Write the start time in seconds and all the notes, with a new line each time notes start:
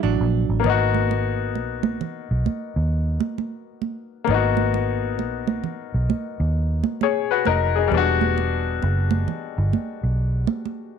Already playing: E3 B3 D4 G5
0.03 A1 F#3 D4
0.21 A#1
0.49 A1
0.60 A#3 B3
0.64 G#1 D#4, muted conga, low conga
0.70 F#4
0.95 high conga
1.11 muted conga
1.55 A#1, muted conga
1.83 high conga
2.01 muted conga, low conga
2.31 B1
2.46 muted fingered electric bass stroke, muted conga, high conga
2.76 D#2
3.20 high conga
3.38 muted conga, high conga
3.82 high conga
4.24 A#3 B3, muted conga, low conga
4.29 G#1 D#4
4.34 F#4
4.57 high conga
4.74 muted conga
5.19 A#1, muted conga
5.47 high conga
5.64 low conga
5.94 B1
6.10 muted fingered electric bass stroke, muted conga, high conga
6.40 D#2
6.84 high conga
7.01 G#4 C#5, muted conga, high conga
7.31 F#4 B4
7.45 F1 D#4 A#4, muted conga, high conga
7.76 D#4 G#4
7.88 E1 G3 B3, low conga
7.94 D4 F#4
8.21 high conga
8.38 muted conga
8.82 F#1, muted conga
9.11 high conga
9.28 muted conga, low conga
9.58 G1
9.73 muted fingered electric bass stroke, muted conga, high conga
10.03 B1
10.47 high conga
10.65 high conga